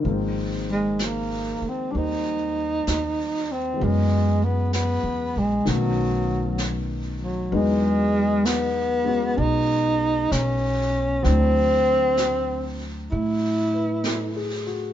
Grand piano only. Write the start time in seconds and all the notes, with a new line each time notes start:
0.00 D#3 F3
0.05 G#3 A#3
0.11 C4
1.91 G3 A#3 C4
3.73 E3 G#3
3.79 F#3 B3
3.85 C#4
5.65 D#3 F#3 A3 B3
5.70 C#4
7.52 E3 F#3 G#3 B3 D#4
9.05 G#3 B3 C#4 F#4
11.22 F#3 A3 C4 D4
11.27 E4
13.74 B4
14.04 A4
14.36 G#4
14.67 F#4